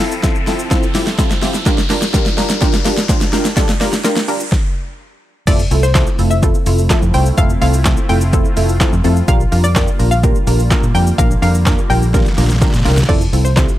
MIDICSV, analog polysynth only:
0, 0, Header, 1, 2, 480
1, 0, Start_track
1, 0, Key_signature, -1, "major"
1, 0, Tempo, 476190
1, 1677, Time_signature, 4, 2, 24, 8
1, 13897, End_track
2, 0, Start_track
2, 0, Title_t, "Analog polysynth"
2, 0, Program_c, 0, 90
2, 0, Note_on_c, 0, 60, 94
2, 0, Note_on_c, 0, 64, 85
2, 0, Note_on_c, 0, 65, 89
2, 0, Note_on_c, 0, 69, 109
2, 134, Note_off_c, 0, 60, 0
2, 134, Note_off_c, 0, 64, 0
2, 137, Note_off_c, 0, 65, 0
2, 138, Note_off_c, 0, 69, 0
2, 233, Note_on_c, 0, 60, 101
2, 235, Note_on_c, 0, 64, 92
2, 236, Note_on_c, 0, 65, 88
2, 238, Note_on_c, 0, 69, 105
2, 374, Note_off_c, 0, 60, 0
2, 376, Note_off_c, 0, 64, 0
2, 377, Note_off_c, 0, 65, 0
2, 379, Note_off_c, 0, 69, 0
2, 474, Note_on_c, 0, 60, 88
2, 475, Note_on_c, 0, 64, 83
2, 477, Note_on_c, 0, 65, 86
2, 478, Note_on_c, 0, 69, 98
2, 615, Note_off_c, 0, 60, 0
2, 616, Note_off_c, 0, 64, 0
2, 619, Note_off_c, 0, 65, 0
2, 620, Note_off_c, 0, 69, 0
2, 712, Note_on_c, 0, 60, 118
2, 714, Note_on_c, 0, 64, 109
2, 715, Note_on_c, 0, 65, 108
2, 717, Note_on_c, 0, 69, 127
2, 853, Note_off_c, 0, 60, 0
2, 855, Note_off_c, 0, 64, 0
2, 856, Note_off_c, 0, 65, 0
2, 858, Note_off_c, 0, 69, 0
2, 952, Note_on_c, 0, 60, 94
2, 955, Note_on_c, 0, 64, 86
2, 955, Note_on_c, 0, 65, 83
2, 957, Note_on_c, 0, 67, 103
2, 1093, Note_off_c, 0, 60, 0
2, 1096, Note_off_c, 0, 64, 0
2, 1097, Note_off_c, 0, 65, 0
2, 1098, Note_off_c, 0, 67, 0
2, 1192, Note_on_c, 0, 60, 94
2, 1194, Note_on_c, 0, 64, 86
2, 1195, Note_on_c, 0, 65, 86
2, 1196, Note_on_c, 0, 69, 104
2, 1333, Note_off_c, 0, 60, 0
2, 1335, Note_off_c, 0, 64, 0
2, 1336, Note_off_c, 0, 65, 0
2, 1337, Note_off_c, 0, 69, 0
2, 1431, Note_on_c, 0, 60, 92
2, 1433, Note_on_c, 0, 64, 81
2, 1434, Note_on_c, 0, 65, 84
2, 1437, Note_on_c, 0, 67, 105
2, 1572, Note_off_c, 0, 60, 0
2, 1574, Note_off_c, 0, 64, 0
2, 1576, Note_off_c, 0, 65, 0
2, 1578, Note_off_c, 0, 67, 0
2, 1672, Note_on_c, 0, 62, 121
2, 1672, Note_on_c, 0, 65, 112
2, 1675, Note_on_c, 0, 67, 116
2, 1677, Note_on_c, 0, 70, 127
2, 1813, Note_off_c, 0, 62, 0
2, 1814, Note_off_c, 0, 65, 0
2, 1817, Note_off_c, 0, 67, 0
2, 1818, Note_off_c, 0, 70, 0
2, 1912, Note_on_c, 0, 62, 98
2, 1913, Note_on_c, 0, 65, 88
2, 1916, Note_on_c, 0, 67, 85
2, 1917, Note_on_c, 0, 70, 110
2, 2053, Note_off_c, 0, 62, 0
2, 2055, Note_off_c, 0, 65, 0
2, 2057, Note_off_c, 0, 67, 0
2, 2058, Note_off_c, 0, 70, 0
2, 2150, Note_on_c, 0, 62, 100
2, 2152, Note_on_c, 0, 65, 87
2, 2153, Note_on_c, 0, 67, 89
2, 2156, Note_on_c, 0, 70, 106
2, 2291, Note_off_c, 0, 62, 0
2, 2293, Note_off_c, 0, 65, 0
2, 2295, Note_off_c, 0, 67, 0
2, 2297, Note_off_c, 0, 70, 0
2, 2391, Note_on_c, 0, 62, 90
2, 2393, Note_on_c, 0, 65, 88
2, 2394, Note_on_c, 0, 67, 86
2, 2396, Note_on_c, 0, 70, 102
2, 2532, Note_off_c, 0, 62, 0
2, 2534, Note_off_c, 0, 65, 0
2, 2535, Note_off_c, 0, 67, 0
2, 2538, Note_off_c, 0, 70, 0
2, 2632, Note_on_c, 0, 62, 118
2, 2633, Note_on_c, 0, 65, 110
2, 2635, Note_on_c, 0, 67, 110
2, 2637, Note_on_c, 0, 70, 127
2, 2773, Note_off_c, 0, 62, 0
2, 2774, Note_off_c, 0, 65, 0
2, 2776, Note_off_c, 0, 67, 0
2, 2779, Note_off_c, 0, 70, 0
2, 2874, Note_on_c, 0, 62, 98
2, 2875, Note_on_c, 0, 65, 88
2, 2877, Note_on_c, 0, 67, 85
2, 2879, Note_on_c, 0, 70, 102
2, 3015, Note_off_c, 0, 62, 0
2, 3016, Note_off_c, 0, 65, 0
2, 3018, Note_off_c, 0, 67, 0
2, 3020, Note_off_c, 0, 70, 0
2, 3114, Note_on_c, 0, 62, 96
2, 3116, Note_on_c, 0, 65, 88
2, 3118, Note_on_c, 0, 67, 89
2, 3119, Note_on_c, 0, 72, 105
2, 3255, Note_off_c, 0, 62, 0
2, 3257, Note_off_c, 0, 65, 0
2, 3259, Note_off_c, 0, 67, 0
2, 3260, Note_off_c, 0, 72, 0
2, 3354, Note_on_c, 0, 62, 93
2, 3357, Note_on_c, 0, 65, 86
2, 3357, Note_on_c, 0, 67, 87
2, 3360, Note_on_c, 0, 70, 103
2, 3495, Note_off_c, 0, 62, 0
2, 3498, Note_off_c, 0, 65, 0
2, 3498, Note_off_c, 0, 67, 0
2, 3501, Note_off_c, 0, 70, 0
2, 3594, Note_on_c, 0, 62, 122
2, 3596, Note_on_c, 0, 65, 110
2, 3597, Note_on_c, 0, 67, 108
2, 3599, Note_on_c, 0, 69, 127
2, 3735, Note_off_c, 0, 62, 0
2, 3737, Note_off_c, 0, 65, 0
2, 3738, Note_off_c, 0, 67, 0
2, 3740, Note_off_c, 0, 69, 0
2, 3834, Note_on_c, 0, 62, 95
2, 3836, Note_on_c, 0, 65, 88
2, 3837, Note_on_c, 0, 67, 86
2, 3839, Note_on_c, 0, 70, 107
2, 3975, Note_off_c, 0, 62, 0
2, 3977, Note_off_c, 0, 65, 0
2, 3978, Note_off_c, 0, 67, 0
2, 3980, Note_off_c, 0, 70, 0
2, 4074, Note_on_c, 0, 62, 101
2, 4076, Note_on_c, 0, 65, 88
2, 4077, Note_on_c, 0, 67, 88
2, 4079, Note_on_c, 0, 70, 110
2, 4215, Note_off_c, 0, 62, 0
2, 4217, Note_off_c, 0, 65, 0
2, 4218, Note_off_c, 0, 67, 0
2, 4220, Note_off_c, 0, 70, 0
2, 4314, Note_on_c, 0, 62, 90
2, 4317, Note_on_c, 0, 65, 81
2, 4317, Note_on_c, 0, 67, 85
2, 4319, Note_on_c, 0, 70, 104
2, 4455, Note_off_c, 0, 62, 0
2, 4458, Note_off_c, 0, 65, 0
2, 4458, Note_off_c, 0, 67, 0
2, 4460, Note_off_c, 0, 70, 0
2, 5516, Note_on_c, 0, 57, 105
2, 5517, Note_on_c, 0, 60, 95
2, 5518, Note_on_c, 0, 64, 92
2, 5519, Note_on_c, 0, 65, 91
2, 5520, Note_on_c, 0, 69, 111
2, 5657, Note_off_c, 0, 57, 0
2, 5658, Note_off_c, 0, 60, 0
2, 5659, Note_off_c, 0, 64, 0
2, 5660, Note_off_c, 0, 65, 0
2, 5661, Note_off_c, 0, 69, 0
2, 5756, Note_on_c, 0, 57, 79
2, 5757, Note_on_c, 0, 60, 73
2, 5758, Note_on_c, 0, 64, 72
2, 5760, Note_on_c, 0, 65, 71
2, 5760, Note_on_c, 0, 69, 89
2, 5897, Note_off_c, 0, 57, 0
2, 5898, Note_off_c, 0, 60, 0
2, 5899, Note_off_c, 0, 64, 0
2, 5901, Note_off_c, 0, 65, 0
2, 5901, Note_off_c, 0, 69, 0
2, 5996, Note_on_c, 0, 57, 84
2, 5998, Note_on_c, 0, 60, 75
2, 5999, Note_on_c, 0, 64, 76
2, 6000, Note_on_c, 0, 65, 75
2, 6001, Note_on_c, 0, 69, 93
2, 6137, Note_off_c, 0, 57, 0
2, 6140, Note_off_c, 0, 60, 0
2, 6141, Note_off_c, 0, 64, 0
2, 6141, Note_off_c, 0, 65, 0
2, 6142, Note_off_c, 0, 69, 0
2, 6236, Note_on_c, 0, 57, 79
2, 6237, Note_on_c, 0, 60, 72
2, 6238, Note_on_c, 0, 64, 68
2, 6239, Note_on_c, 0, 65, 73
2, 6241, Note_on_c, 0, 69, 83
2, 6377, Note_off_c, 0, 57, 0
2, 6378, Note_off_c, 0, 60, 0
2, 6379, Note_off_c, 0, 64, 0
2, 6381, Note_off_c, 0, 65, 0
2, 6382, Note_off_c, 0, 69, 0
2, 6475, Note_on_c, 0, 57, 104
2, 6477, Note_on_c, 0, 60, 90
2, 6478, Note_on_c, 0, 64, 91
2, 6479, Note_on_c, 0, 65, 91
2, 6481, Note_on_c, 0, 69, 108
2, 6616, Note_off_c, 0, 57, 0
2, 6618, Note_off_c, 0, 60, 0
2, 6619, Note_off_c, 0, 64, 0
2, 6620, Note_off_c, 0, 65, 0
2, 6622, Note_off_c, 0, 69, 0
2, 6717, Note_on_c, 0, 57, 80
2, 6718, Note_on_c, 0, 60, 74
2, 6719, Note_on_c, 0, 64, 71
2, 6721, Note_on_c, 0, 65, 76
2, 6722, Note_on_c, 0, 69, 87
2, 6858, Note_off_c, 0, 57, 0
2, 6859, Note_off_c, 0, 60, 0
2, 6860, Note_off_c, 0, 64, 0
2, 6862, Note_off_c, 0, 65, 0
2, 6862, Note_off_c, 0, 69, 0
2, 6955, Note_on_c, 0, 57, 96
2, 6957, Note_on_c, 0, 60, 90
2, 6958, Note_on_c, 0, 64, 87
2, 6960, Note_on_c, 0, 65, 87
2, 6961, Note_on_c, 0, 69, 106
2, 7096, Note_off_c, 0, 57, 0
2, 7098, Note_off_c, 0, 60, 0
2, 7099, Note_off_c, 0, 64, 0
2, 7101, Note_off_c, 0, 65, 0
2, 7102, Note_off_c, 0, 69, 0
2, 7196, Note_on_c, 0, 57, 81
2, 7197, Note_on_c, 0, 60, 75
2, 7199, Note_on_c, 0, 64, 71
2, 7200, Note_on_c, 0, 65, 71
2, 7200, Note_on_c, 0, 72, 91
2, 7337, Note_off_c, 0, 57, 0
2, 7338, Note_off_c, 0, 60, 0
2, 7340, Note_off_c, 0, 64, 0
2, 7341, Note_off_c, 0, 65, 0
2, 7341, Note_off_c, 0, 72, 0
2, 7436, Note_on_c, 0, 57, 104
2, 7439, Note_on_c, 0, 60, 92
2, 7439, Note_on_c, 0, 64, 95
2, 7440, Note_on_c, 0, 65, 98
2, 7441, Note_on_c, 0, 69, 111
2, 7577, Note_off_c, 0, 57, 0
2, 7580, Note_off_c, 0, 60, 0
2, 7580, Note_off_c, 0, 64, 0
2, 7582, Note_off_c, 0, 65, 0
2, 7582, Note_off_c, 0, 69, 0
2, 7674, Note_on_c, 0, 57, 84
2, 7676, Note_on_c, 0, 60, 71
2, 7677, Note_on_c, 0, 64, 74
2, 7678, Note_on_c, 0, 65, 74
2, 7679, Note_on_c, 0, 69, 90
2, 7815, Note_off_c, 0, 57, 0
2, 7817, Note_off_c, 0, 60, 0
2, 7818, Note_off_c, 0, 64, 0
2, 7819, Note_off_c, 0, 65, 0
2, 7820, Note_off_c, 0, 69, 0
2, 7915, Note_on_c, 0, 57, 85
2, 7916, Note_on_c, 0, 60, 76
2, 7917, Note_on_c, 0, 64, 75
2, 7918, Note_on_c, 0, 65, 78
2, 7920, Note_on_c, 0, 69, 88
2, 8056, Note_off_c, 0, 57, 0
2, 8057, Note_off_c, 0, 60, 0
2, 8059, Note_off_c, 0, 64, 0
2, 8059, Note_off_c, 0, 65, 0
2, 8061, Note_off_c, 0, 69, 0
2, 8155, Note_on_c, 0, 57, 78
2, 8156, Note_on_c, 0, 60, 72
2, 8158, Note_on_c, 0, 64, 71
2, 8159, Note_on_c, 0, 65, 73
2, 8160, Note_on_c, 0, 69, 85
2, 8296, Note_off_c, 0, 57, 0
2, 8297, Note_off_c, 0, 60, 0
2, 8299, Note_off_c, 0, 64, 0
2, 8300, Note_off_c, 0, 65, 0
2, 8301, Note_off_c, 0, 69, 0
2, 8395, Note_on_c, 0, 57, 102
2, 8396, Note_on_c, 0, 60, 92
2, 8397, Note_on_c, 0, 64, 95
2, 8399, Note_on_c, 0, 65, 92
2, 8400, Note_on_c, 0, 69, 109
2, 8536, Note_off_c, 0, 57, 0
2, 8537, Note_off_c, 0, 60, 0
2, 8539, Note_off_c, 0, 64, 0
2, 8540, Note_off_c, 0, 65, 0
2, 8541, Note_off_c, 0, 69, 0
2, 8634, Note_on_c, 0, 57, 80
2, 8635, Note_on_c, 0, 60, 71
2, 8636, Note_on_c, 0, 64, 74
2, 8639, Note_on_c, 0, 65, 72
2, 8639, Note_on_c, 0, 69, 83
2, 8775, Note_off_c, 0, 57, 0
2, 8776, Note_off_c, 0, 60, 0
2, 8777, Note_off_c, 0, 64, 0
2, 8780, Note_off_c, 0, 65, 0
2, 8781, Note_off_c, 0, 69, 0
2, 8873, Note_on_c, 0, 57, 93
2, 8875, Note_on_c, 0, 60, 84
2, 8876, Note_on_c, 0, 64, 91
2, 8877, Note_on_c, 0, 65, 87
2, 8879, Note_on_c, 0, 69, 107
2, 9015, Note_off_c, 0, 57, 0
2, 9017, Note_off_c, 0, 60, 0
2, 9017, Note_off_c, 0, 64, 0
2, 9018, Note_off_c, 0, 65, 0
2, 9020, Note_off_c, 0, 69, 0
2, 9114, Note_on_c, 0, 57, 94
2, 9115, Note_on_c, 0, 60, 87
2, 9116, Note_on_c, 0, 64, 87
2, 9117, Note_on_c, 0, 65, 88
2, 9119, Note_on_c, 0, 69, 107
2, 9255, Note_off_c, 0, 57, 0
2, 9256, Note_off_c, 0, 60, 0
2, 9257, Note_off_c, 0, 64, 0
2, 9258, Note_off_c, 0, 65, 0
2, 9260, Note_off_c, 0, 69, 0
2, 9353, Note_on_c, 0, 58, 101
2, 9355, Note_on_c, 0, 62, 94
2, 9356, Note_on_c, 0, 65, 94
2, 9356, Note_on_c, 0, 67, 98
2, 9358, Note_on_c, 0, 70, 115
2, 9494, Note_off_c, 0, 58, 0
2, 9496, Note_off_c, 0, 62, 0
2, 9497, Note_off_c, 0, 65, 0
2, 9498, Note_off_c, 0, 67, 0
2, 9500, Note_off_c, 0, 70, 0
2, 9592, Note_on_c, 0, 58, 80
2, 9593, Note_on_c, 0, 62, 72
2, 9594, Note_on_c, 0, 65, 73
2, 9595, Note_on_c, 0, 67, 73
2, 9597, Note_on_c, 0, 70, 89
2, 9733, Note_off_c, 0, 58, 0
2, 9734, Note_off_c, 0, 62, 0
2, 9735, Note_off_c, 0, 65, 0
2, 9736, Note_off_c, 0, 67, 0
2, 9738, Note_off_c, 0, 70, 0
2, 9831, Note_on_c, 0, 58, 82
2, 9833, Note_on_c, 0, 62, 75
2, 9834, Note_on_c, 0, 65, 73
2, 9836, Note_on_c, 0, 67, 77
2, 9837, Note_on_c, 0, 70, 92
2, 9973, Note_off_c, 0, 58, 0
2, 9974, Note_off_c, 0, 62, 0
2, 9975, Note_off_c, 0, 65, 0
2, 9977, Note_off_c, 0, 67, 0
2, 9978, Note_off_c, 0, 70, 0
2, 10070, Note_on_c, 0, 58, 74
2, 10072, Note_on_c, 0, 62, 73
2, 10073, Note_on_c, 0, 65, 70
2, 10074, Note_on_c, 0, 67, 70
2, 10076, Note_on_c, 0, 70, 88
2, 10211, Note_off_c, 0, 58, 0
2, 10213, Note_off_c, 0, 62, 0
2, 10214, Note_off_c, 0, 65, 0
2, 10215, Note_off_c, 0, 67, 0
2, 10217, Note_off_c, 0, 70, 0
2, 10313, Note_on_c, 0, 58, 98
2, 10315, Note_on_c, 0, 62, 95
2, 10317, Note_on_c, 0, 65, 94
2, 10317, Note_on_c, 0, 67, 91
2, 10317, Note_on_c, 0, 70, 112
2, 10454, Note_off_c, 0, 58, 0
2, 10456, Note_off_c, 0, 62, 0
2, 10458, Note_off_c, 0, 65, 0
2, 10458, Note_off_c, 0, 67, 0
2, 10459, Note_off_c, 0, 70, 0
2, 10553, Note_on_c, 0, 58, 76
2, 10553, Note_on_c, 0, 62, 74
2, 10554, Note_on_c, 0, 65, 76
2, 10556, Note_on_c, 0, 67, 72
2, 10558, Note_on_c, 0, 70, 85
2, 10694, Note_off_c, 0, 58, 0
2, 10694, Note_off_c, 0, 62, 0
2, 10695, Note_off_c, 0, 65, 0
2, 10697, Note_off_c, 0, 67, 0
2, 10699, Note_off_c, 0, 70, 0
2, 10792, Note_on_c, 0, 58, 96
2, 10793, Note_on_c, 0, 65, 87
2, 10794, Note_on_c, 0, 62, 91
2, 10795, Note_on_c, 0, 67, 88
2, 10797, Note_on_c, 0, 70, 108
2, 10933, Note_off_c, 0, 58, 0
2, 10935, Note_off_c, 0, 62, 0
2, 10935, Note_off_c, 0, 65, 0
2, 10936, Note_off_c, 0, 67, 0
2, 10938, Note_off_c, 0, 70, 0
2, 11032, Note_on_c, 0, 58, 79
2, 11033, Note_on_c, 0, 62, 74
2, 11034, Note_on_c, 0, 65, 73
2, 11036, Note_on_c, 0, 67, 71
2, 11037, Note_on_c, 0, 70, 85
2, 11173, Note_off_c, 0, 58, 0
2, 11174, Note_off_c, 0, 62, 0
2, 11175, Note_off_c, 0, 65, 0
2, 11177, Note_off_c, 0, 67, 0
2, 11178, Note_off_c, 0, 70, 0
2, 11272, Note_on_c, 0, 58, 107
2, 11273, Note_on_c, 0, 62, 99
2, 11274, Note_on_c, 0, 65, 93
2, 11276, Note_on_c, 0, 67, 96
2, 11278, Note_on_c, 0, 70, 114
2, 11413, Note_off_c, 0, 58, 0
2, 11414, Note_off_c, 0, 62, 0
2, 11415, Note_off_c, 0, 65, 0
2, 11417, Note_off_c, 0, 67, 0
2, 11419, Note_off_c, 0, 70, 0
2, 11511, Note_on_c, 0, 58, 78
2, 11512, Note_on_c, 0, 62, 76
2, 11513, Note_on_c, 0, 65, 76
2, 11514, Note_on_c, 0, 67, 75
2, 11516, Note_on_c, 0, 70, 92
2, 11652, Note_off_c, 0, 58, 0
2, 11653, Note_off_c, 0, 62, 0
2, 11654, Note_off_c, 0, 65, 0
2, 11655, Note_off_c, 0, 67, 0
2, 11657, Note_off_c, 0, 70, 0
2, 11751, Note_on_c, 0, 58, 81
2, 11752, Note_on_c, 0, 62, 74
2, 11753, Note_on_c, 0, 65, 76
2, 11755, Note_on_c, 0, 67, 78
2, 11756, Note_on_c, 0, 70, 90
2, 11892, Note_off_c, 0, 58, 0
2, 11893, Note_off_c, 0, 62, 0
2, 11894, Note_off_c, 0, 65, 0
2, 11896, Note_off_c, 0, 67, 0
2, 11897, Note_off_c, 0, 70, 0
2, 11991, Note_on_c, 0, 58, 80
2, 11993, Note_on_c, 0, 62, 69
2, 11994, Note_on_c, 0, 65, 71
2, 11995, Note_on_c, 0, 67, 69
2, 11996, Note_on_c, 0, 70, 85
2, 12132, Note_off_c, 0, 58, 0
2, 12134, Note_off_c, 0, 62, 0
2, 12135, Note_off_c, 0, 65, 0
2, 12136, Note_off_c, 0, 67, 0
2, 12137, Note_off_c, 0, 70, 0
2, 12233, Note_on_c, 0, 58, 103
2, 12234, Note_on_c, 0, 62, 93
2, 12236, Note_on_c, 0, 65, 91
2, 12236, Note_on_c, 0, 67, 94
2, 12237, Note_on_c, 0, 70, 110
2, 12374, Note_off_c, 0, 58, 0
2, 12375, Note_off_c, 0, 62, 0
2, 12377, Note_off_c, 0, 65, 0
2, 12377, Note_off_c, 0, 67, 0
2, 12378, Note_off_c, 0, 70, 0
2, 12473, Note_on_c, 0, 58, 81
2, 12475, Note_on_c, 0, 62, 76
2, 12476, Note_on_c, 0, 65, 72
2, 12477, Note_on_c, 0, 67, 74
2, 12478, Note_on_c, 0, 70, 87
2, 12615, Note_off_c, 0, 58, 0
2, 12616, Note_off_c, 0, 62, 0
2, 12617, Note_off_c, 0, 65, 0
2, 12618, Note_off_c, 0, 67, 0
2, 12619, Note_off_c, 0, 70, 0
2, 12713, Note_on_c, 0, 58, 96
2, 12715, Note_on_c, 0, 62, 83
2, 12716, Note_on_c, 0, 65, 89
2, 12717, Note_on_c, 0, 67, 89
2, 12719, Note_on_c, 0, 70, 108
2, 12855, Note_off_c, 0, 58, 0
2, 12856, Note_off_c, 0, 62, 0
2, 12857, Note_off_c, 0, 65, 0
2, 12858, Note_off_c, 0, 67, 0
2, 12860, Note_off_c, 0, 70, 0
2, 12952, Note_on_c, 0, 58, 90
2, 12954, Note_on_c, 0, 62, 85
2, 12955, Note_on_c, 0, 65, 87
2, 12956, Note_on_c, 0, 67, 88
2, 12957, Note_on_c, 0, 70, 103
2, 13093, Note_off_c, 0, 58, 0
2, 13095, Note_off_c, 0, 62, 0
2, 13096, Note_off_c, 0, 65, 0
2, 13097, Note_off_c, 0, 67, 0
2, 13098, Note_off_c, 0, 70, 0
2, 13192, Note_on_c, 0, 57, 104
2, 13193, Note_on_c, 0, 60, 93
2, 13195, Note_on_c, 0, 64, 97
2, 13196, Note_on_c, 0, 65, 95
2, 13197, Note_on_c, 0, 69, 115
2, 13333, Note_off_c, 0, 57, 0
2, 13335, Note_off_c, 0, 60, 0
2, 13336, Note_off_c, 0, 64, 0
2, 13337, Note_off_c, 0, 65, 0
2, 13338, Note_off_c, 0, 69, 0
2, 13435, Note_on_c, 0, 57, 78
2, 13436, Note_on_c, 0, 60, 72
2, 13437, Note_on_c, 0, 64, 74
2, 13438, Note_on_c, 0, 65, 75
2, 13440, Note_on_c, 0, 69, 87
2, 13576, Note_off_c, 0, 57, 0
2, 13577, Note_off_c, 0, 60, 0
2, 13578, Note_off_c, 0, 64, 0
2, 13579, Note_off_c, 0, 65, 0
2, 13581, Note_off_c, 0, 69, 0
2, 13673, Note_on_c, 0, 57, 83
2, 13675, Note_on_c, 0, 60, 74
2, 13676, Note_on_c, 0, 64, 77
2, 13677, Note_on_c, 0, 65, 74
2, 13679, Note_on_c, 0, 67, 86
2, 13814, Note_off_c, 0, 57, 0
2, 13816, Note_off_c, 0, 60, 0
2, 13817, Note_off_c, 0, 64, 0
2, 13818, Note_off_c, 0, 65, 0
2, 13820, Note_off_c, 0, 67, 0
2, 13897, End_track
0, 0, End_of_file